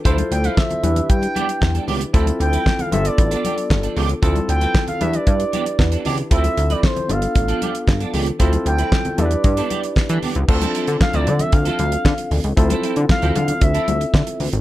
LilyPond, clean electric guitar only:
\new Staff \with { instrumentName = "Clean electric guitar" } { \time 4/4 \key d \dorian \tempo 4 = 115 <f c' e' a'>16 r8 <f c' e' b'>16 r4. <g b d' g'>16 r8 <g b d' a'>16 <g b d' g'>16 r16 | <f c' e' a'>16 r8 <f c' e' b'>16 r4 r16 <f b d' a'>16 <f b d' g'>16 r8 <f b d' a'>16 <f b d' g'>16 r16 | <f c' e' a'>16 r8 <f c' e' b'>16 r4. <e b d' g'>16 r8 <e b d' a'>16 <e b d' g'>16 r16 | <f c' e' a'>16 r8 <f c' e' b'>16 r4 r16 <f b d' a'>16 <f b d' g'>16 r8 <f b d' a'>16 <f b d' g'>16 r16 |
<f c' e' a'>16 r8 <f c' e' b'>16 r4 r16 <g b d' a'>16 <g b d' g'>16 r8 <g b d' a'>16 <g b d' g'>16 r16 | r16 <f c' e' a'>16 <f c' e' a'>16 r8 <f c' e' a'>16 r8. <f c' e' a'>16 r4. | r16 <f c' e' a'>16 <f c' e' a'>16 r8 <f c' e' a'>16 r8. <f c' e' a'>16 r4. | }